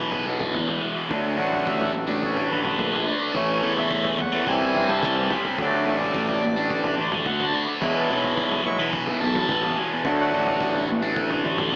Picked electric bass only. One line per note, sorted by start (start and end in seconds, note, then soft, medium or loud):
0.00 0.23 B1 medium
0.26 0.52 B1 medium
0.55 0.80 E2 medium
1.10 1.36 D2 loud
1.39 2.47 A1 medium
2.51 2.77 A1 loud
2.79 3.04 A#1 medium
3.35 3.60 A1 loud
3.63 4.43 E2 medium
4.47 4.72 C2 loud
4.74 5.00 G2 medium
5.02 5.28 C2 medium
5.58 5.84 D2 loud
5.86 6.94 A1 medium
6.98 7.23 A1 medium
7.26 7.51 D2 medium
7.82 8.07 E2 loud
8.10 9.17 B1 loud
9.21 9.46 B1 medium
9.49 9.74 A1 medium
10.04 10.30 D2 loud
10.32 11.40 A1 medium
11.44 11.70 A1 loud
11.72 11.76 D2 medium